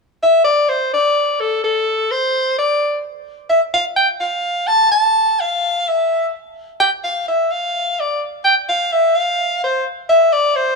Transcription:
soprano saxophone
0.23 E5
0.44 D5
0.69 C5
0.94 D5
1.41 A4
1.64 A4
2.11 C5
2.59 D5
3.50 E5
3.74 F5
3.97 G5
4.20 F5
4.67 A5
4.91 A5
5.40 F5
5.88 E5
6.80 G5
7.04 F5
7.28 E5
7.51 F5
8.00 D5
8.45 G5
8.69 F5
8.92 E5
9.15 F5
9.64 C5
10.10 E5
10.33 D5
10.56 C5

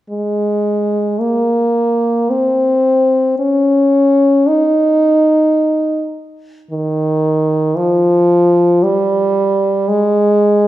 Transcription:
french horn
0.10 G#3
1.21 A#3
2.30 C4
3.39 C#4
4.48 D#4
6.71 D#3
7.76 F3
8.83 G3
9.88 G#3

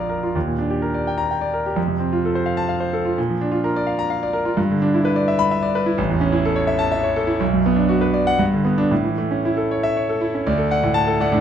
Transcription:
grand piano
Already playing: A#1 F2 D4 F4 A#4 F5 A#5
0.00 D5
0.10 A#4
0.23 F4
0.35 D#2
0.47 A#2
0.59 D4
0.70 G4
0.82 A#4
0.94 D5
1.07 G5
1.18 A#5
1.31 G5
1.41 D5
1.54 A#4
1.66 G4
1.76 F2
1.87 C3
2.00 C4
2.13 F4
2.25 A4
2.35 C5
2.46 F5
2.57 A5
2.69 F5
2.80 C5
2.93 A4
3.05 F4
3.18 A#2
3.29 F3
3.41 D4
3.52 F4
3.64 A#4
3.76 D5
3.87 F5
3.99 A#5
4.10 F5
4.23 D5
4.33 A#4
4.45 F4
4.57 G2
4.71 D3
4.82 D4
4.94 E4
5.05 B4
5.16 D5
5.28 E5
5.39 B5
5.51 E5
5.63 D5
5.75 B4
5.86 E4
5.98 A1
6.10 E2
6.21 C#4
6.32 E4
6.45 A4
6.56 C#5
6.67 E5
6.79 A5
6.92 E5
7.03 C#5
7.16 A4
7.27 E4
7.40 B1
7.53 F#2
7.66 B3
7.76 D4
7.89 F#4
8.01 B4
8.14 D5
8.27 F#5
8.39 G2
8.53 D3
8.65 B3
8.78 D4
8.91 A2
9.05 E3
9.18 A3
9.31 C#4
9.45 E4
9.57 A4
9.71 C#5
9.83 E5
9.96 C#5
10.09 A4
10.21 E4
10.34 C#4
10.47 D2 D5
10.58 A4
10.71 D5 F#5
10.83 A2
10.94 A5
11.07 A4
11.20 A3 D5 F#5
11.32 A2 D4

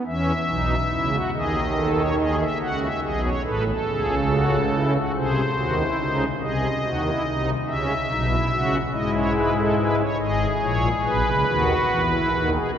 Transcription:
pipe organ
0.06 E2 E3 C#4 E5
0.48 B1 B2 D#4
0.91 C#2 C#3 E4
1.12 F#4
1.34 D#2 D#3 G#4 D#5
1.76 A4
1.97 C#5
2.18 G#4 D#5
2.40 E5
2.62 C#2 C#3 F#4 F#5
2.82 E5
3.03 B1 B2 G#4 D#5
3.24 C#5
3.45 A1 A2 A4 B4
3.66 A4
3.89 C#2 C#3 G#4
4.30 F#4
4.73 E4
4.94 F#4
5.16 C2 C3 G#4 C5
5.57 D#2 D#3 F#4
5.79 E4
5.99 C#2 C#3 D#4
6.42 C2 C3 G#4 D#5
6.84 D#2 D#3 F#4
7.04 E4
7.25 C2 C3 D#4
7.66 C#2 C#3 C#4 E5
8.09 B1 B2 D#4
8.29 E4
8.51 C#2 C#3 F#4
8.93 G#2 G#3 E4 D#5
9.15 C#5
9.35 B4
9.57 A4
9.78 B4
10.00 C#5
10.20 G#1 G#2 G#4 D#5
10.62 A#1 A#2 C#5
11.04 B1 B2 B4
11.26 C#2 C#3
11.47 D#2 D#3 F#4
11.90 E2 E3
12.10 E4
12.31 D#2 D#3 F#4
12.53 G#4
12.73 C#2 C#3 A#4

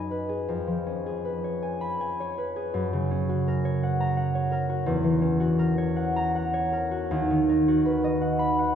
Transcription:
harp
Already playing: F#2 F#3 D#4 F#4 G#4 D#5 F#5 G#5 B5
0.11 B4
0.29 G#4
0.49 F2
0.67 F3
0.87 C#4
1.06 G#4
1.25 B4
1.44 C#5
1.62 G#5
1.81 B5
2.00 G#5
2.20 C#5
2.38 B4
2.56 G#4
2.74 F#2
2.93 C#3
3.11 C#4
3.29 F#4
3.48 A#4
3.65 C#5
3.83 F#5
4.00 A#5
4.17 F#5
4.35 C#5
4.52 A#4
4.69 F#4
4.86 E2
5.04 E3
5.22 C#4
5.40 F#4
5.59 A#4
5.78 C#5
5.96 F#5
6.16 A#5
6.35 F#5
6.53 C#5
6.72 A#4
6.91 F#4
7.11 D#2
7.30 D#3
7.49 D#4
7.68 F#4
7.85 B4
8.04 D#5
8.21 F#5
8.39 B5
8.59 F#5

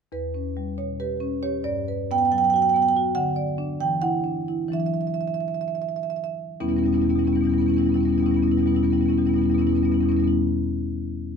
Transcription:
marimba
0.12 E2 B4
0.34 C#4
0.57 G3
0.78 B2 C#5
1.00 G4 B4
1.20 C#4
1.43 G4 C#5
1.64 G2 D5
1.88 B4
2.11 B3 G5
2.18 G5
2.25 G5
2.32 F#3 G5
2.38 G5
2.44 G5
2.50 F#4 G5
2.56 G5
2.62 G5
2.69 G5
2.74 B3 G5
2.82 G5
2.89 G5
2.97 F#4
3.15 D3 F#5
3.36 D5
3.58 D4
3.80 E3 G5
4.02 E4 F#5
4.24 D4
4.48 E4
4.68 E3 F#3 D4
4.73 E5
4.80 E5
4.86 E5
4.94 E5
5.01 E5
5.07 E5
5.14 E5
5.21 E5
5.28 E5
5.34 E5
5.40 E5
5.48 E5
5.54 E5
5.61 E5
5.68 E5
5.75 E5
5.82 E5
5.89 E5
5.96 E5
6.03 E5
6.10 E5
6.16 E5
6.24 E5
6.60 E2 B2 G3 B3 C#4 E4
6.68 E2 B2 G3 B3 C#4 E4
6.76 B2 G3 B3 C#4 E4
6.83 E2 G3 B3 C#4 E4
6.88 B2
6.93 E2 G3 B3 C#4 E4
6.98 B2 C#4 E4
7.02 E2 G3 B3
7.07 B2 B3 C#4 E4
7.11 G3
7.15 E2 B2 G3 B3 C#4 E4
7.24 E2 B2 G3 B3 C#4 E4
7.33 E2 B2 G3 B3 C#4 E4
7.41 B2 G3 B3 C#4
7.45 E2 E4
7.50 B2 G3 B3 C#4 E4
7.55 E2 B3
7.60 B2 G3 C#4 E4
7.66 E2 B3 C#4
7.70 B2 G3 E4
7.74 E2 B3 C#4
7.78 B2 G3 B3 E4
7.84 E2 G3 C#4 E4
7.89 B2 B3 C#4
7.94 E2 G3 B3 E4
7.99 B2 C#4
8.03 E2 G3 B3 E4
8.07 B2 C#4 E4
8.13 B2 G3 B3
8.18 E2 B3 C#4 E4
8.23 B2 G3 C#4 E4
8.28 E2 G3 B3
8.34 B2 B3 C#4 E4
8.38 E2 G3
8.42 B2 B3 C#4 E4
8.48 E2 G3 C#4 E4
8.52 B2 B3
8.57 E2 G3 B3 C#4 E4
8.63 B2 G3
8.67 B3 C#4 E4
8.72 E2 B2 G3 B3
8.76 C#4 E4
8.81 E2 B2 G3 B3 C#4 E4
8.90 B2 G3 B3 C#4 E4
8.94 E2 B3
9.00 B2 G3 C#4 E4
9.06 E2 B2 G3 B3 C#4
9.10 B3 E4
9.18 E2 B2 G3 C#4 E4
9.22 B3 C#4
9.26 E2 B2 G3 B3 E4
9.33 B2 G3 C#4 E4
9.38 E2 G3 B3 C#4
9.44 B2 B3 E4
9.49 E2 G3 C#4 E4
9.54 B2 B3 C#4
9.59 E2 G3 B3 E4
9.64 B2 G3 C#4 E4
9.69 E2 B2 B3
9.75 G3 B3 C#4 E4
9.81 E2 B2 G3 C#4 E4
9.85 B2 B3
9.92 E2 G3 B3 C#4 E4
9.97 B2 G3 B3 C#4
10.03 E2 B2 E4
10.09 E2 G3 B3 C#4 E4
10.13 B2 B3 C#4
10.19 E2 B2 G3 E4
10.24 G3 B3 C#4 E4

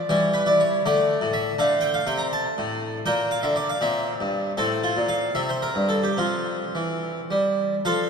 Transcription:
harpsichord
0.09 E3 G3 C#5
0.34 B4
0.46 E4 D5
0.60 C#5
0.86 D3 A3 D5
1.21 A2
1.33 E5
1.58 D3 A3 F5
1.81 G5
1.94 F5
2.07 C3 G5
2.18 A#5
2.33 A5
2.58 A2
3.06 A#2 A#3 G5
3.31 F5
3.43 D3 E5
3.56 D5
3.69 F5
3.81 A#2 C4 E5
4.20 G2
4.57 A2 C4 A4
4.84 F4
4.96 A#2
5.08 F5
5.35 C3 C4 E5
5.49 C5
5.62 A#4
5.75 G2
5.89 A4
6.03 G4
6.17 F3 C4 F4
6.75 E3
7.31 G3
7.85 F3 A4 C5 F5

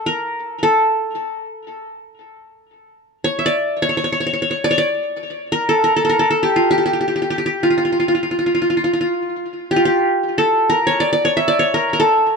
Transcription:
qanun
Already playing: A4
0.06 A#4
0.63 A4
3.24 C#5
3.39 E5
3.46 D5
3.82 C#5
3.89 C#5
3.97 C#5
4.04 C#5
4.12 C#5
4.20 C#5
4.27 C#5
4.33 C#5
4.42 C#5
4.51 C#5
4.64 D5
4.71 C#5
4.78 D5
5.52 A#4
5.69 A4
5.84 A#4
5.96 A4
6.05 A4
6.10 A#4
6.19 A4
6.31 A4
6.43 G4
6.56 F4
6.71 G4
6.78 G4
6.86 G4
6.93 G4
7.01 G4
7.08 G4
7.16 G4
7.22 G4
7.30 G4
7.38 G4
7.46 G4
7.63 F4
7.70 F4
7.78 F4
7.85 F4
7.92 F4
8.00 F4
8.08 F4
8.15 F4
8.23 F4
8.31 F4
8.39 F4
8.46 F4
8.55 F4
8.62 F4
8.70 F4
8.77 F4
8.84 F4
8.93 F4
9.01 F4
9.71 G4
9.76 F4
9.85 G4
10.38 A4
10.70 A#4
10.87 C#5
11.00 D5
11.13 D5
11.25 C#5
11.37 E5
11.48 D5
11.59 C#5
11.74 A#4
11.93 A#4
12.00 A4

